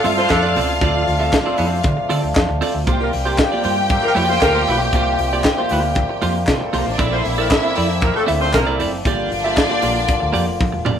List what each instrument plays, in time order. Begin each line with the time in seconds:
Already playing: french horn section C3 F3 A3 D4 F4, string section F4 F5
0.04 fingered electric bass G2, clean electric guitar C4 F4 A4 E5, open hi-hat
0.17 horn section F4 A4 C5, muted clean electric guitar stroke, snare
0.29 fingered electric bass F2, horn section D4 F4 A4, muted clean electric guitar stroke, kick, snare, clap, closed hi-hat
0.43 clean electric guitar C4 F4 A4 D5
0.56 fingered electric bass C#2, clean electric guitar C4 F4 A4 D5, open hi-hat
0.69 muted clean electric guitar stroke
0.81 fingered electric bass D2, clean electric guitar C4 F4 A4 D5, kick, closed hi-hat
1.07 fingered electric bass D2, muted clean electric guitar stroke, open hi-hat
1.20 clean electric guitar C4 F4 A4 E5
1.33 muted clean electric guitar stroke, kick, snare, clap, closed hi-hat
1.46 clean electric guitar C4 F4 A4 D5
1.58 fingered electric bass F2, clean electric guitar C4 F4 A4 D5, open hi-hat
1.71 muted clean electric guitar stroke
1.84 fingered electric bass D3, muted clean electric guitar stroke, kick, closed hi-hat
1.97 muted clean electric guitar stroke
2.09 fingered electric bass D3, clean electric guitar C4 F4 A4 D5, open hi-hat
2.22 fingered electric bass D2, muted clean electric guitar stroke
2.35 fingered electric bass F2, kick, snare, clap, closed hi-hat
2.49 fingered electric bass D2, muted clean electric guitar stroke
2.61 clean electric guitar C4 F4 A4 D5, open hi-hat
2.75 fingered electric bass D2, muted clean electric guitar stroke
2.87 fingered electric bass C2, french horn section F3 G3 A#3 F4, clean electric guitar A#3 F4 G4 C5, string section G4 G5, kick, closed hi-hat
3.00 horn section F4 G4 A#4
3.13 fingered electric bass C2, muted clean electric guitar stroke, open hi-hat
3.25 horn section A#3 C4 G4, clean electric guitar A#3 F4 G4 C5
3.38 muted clean electric guitar stroke, kick, snare, clap, closed hi-hat
3.52 clean electric guitar A#3 F4 G4 D5
3.63 fingered electric bass G2, clean electric guitar A#3 F4 G4 C5, open hi-hat
3.77 muted clean electric guitar stroke
3.89 horn section A#3 C4 G4, muted clean electric guitar stroke, kick, closed hi-hat
4.02 horn section F4 G4 A#4, muted clean electric guitar stroke
4.15 fingered electric bass F2, clean electric guitar A#3 F4 G4 D5, open hi-hat
4.29 horn section F4 G4 C5, muted clean electric guitar stroke, snare
4.41 fingered electric bass D2, horn section F4 G4 A#4, muted clean electric guitar stroke, kick, snare, clap, closed hi-hat
4.55 clean electric guitar A#3 F4 G4 C5
4.67 fingered electric bass B1, clean electric guitar A#3 F4 G4 C5, open hi-hat
4.82 muted clean electric guitar stroke
4.93 fingered electric bass C2, clean electric guitar A#3 F4 G4 C5, kick, closed hi-hat
5.19 fingered electric bass C2, muted clean electric guitar stroke, open hi-hat
5.33 clean electric guitar A#3 F4 G4 D5
5.44 muted clean electric guitar stroke, kick, snare, clap, closed hi-hat
5.58 clean electric guitar A#3 F4 G4 C5
5.69 fingered electric bass D2, clean electric guitar A#3 F4 G4 C5, open hi-hat
5.95 muted clean electric guitar stroke, kick, closed hi-hat
6.09 muted clean electric guitar stroke
6.22 fingered electric bass F2, clean electric guitar A#3 F4 G4 C5, open hi-hat
6.35 muted clean electric guitar stroke
6.47 fingered electric bass C3, string section F3 F4, kick, snare, clap, closed hi-hat
6.56 string section G3 G4, muted clean electric guitar stroke
6.64 string section A3 A4
6.73 fingered electric bass C2, clean electric guitar A#3 F4 G4 C5, string section A#3 A#4, open hi-hat
6.82 string section C4 C5
6.86 fingered electric bass A1, muted clean electric guitar stroke
6.91 string section D4 D5
6.98 fingered electric bass A#1, french horn section F3 C4 D4, clean electric guitar C4 E4 A4 D5, string section E4 E5, kick, closed hi-hat
7.12 horn section F4 A4 C5
7.24 fingered electric bass A#1, muted clean electric guitar stroke, open hi-hat
7.38 horn section A#3 F4 A#4, clean electric guitar C4 E4 A4 D5
7.51 muted clean electric guitar stroke, kick, snare, clap, closed hi-hat
7.63 clean electric guitar C4 E4 A4 E5
7.75 fingered electric bass F2, clean electric guitar C4 E4 A4 D5, open hi-hat
7.89 muted clean electric guitar stroke
8.01 horn section A#3 F4 A#4, muted clean electric guitar stroke, kick, closed hi-hat
8.14 horn section A3 F4 A4, muted clean electric guitar stroke
8.26 fingered electric bass D2, clean electric guitar C4 E4 A4 E5, open hi-hat
8.40 horn section F4 A4 C5, muted clean electric guitar stroke, snare
8.53 fingered electric bass C2, horn section A#3 F4 A#4, muted clean electric guitar stroke, kick, snare, clap, closed hi-hat
8.67 clean electric guitar C4 E4 A4 D5
8.79 fingered electric bass F#1, clean electric guitar C4 E4 A4 D5, open hi-hat
8.92 muted clean electric guitar stroke
9.05 fingered electric bass G1, french horn section D3 F3 G3 A#3 F4, clean electric guitar A#3 F4 G4 D5, string section D4 D5, kick, closed hi-hat
9.32 fingered electric bass G1, muted clean electric guitar stroke, open hi-hat
9.44 clean electric guitar A#3 F4 G4 E5
9.57 kick, snare, clap, closed hi-hat
9.70 clean electric guitar A#3 F4 G4 D5
9.82 fingered electric bass A#1, clean electric guitar A#3 F4 G4 D5, open hi-hat
9.95 muted clean electric guitar stroke
10.08 muted clean electric guitar stroke, kick, closed hi-hat
10.20 fingered electric bass D2, muted clean electric guitar stroke
10.33 fingered electric bass F2, clean electric guitar A#3 F4 G4 D5, open hi-hat
10.47 fingered electric bass F1, muted clean electric guitar stroke
10.61 kick, high tom
10.72 fingered electric bass E1, muted clean electric guitar stroke
10.85 fingered electric bass F1, clean electric guitar A#3 F4 G4 D5, mid tom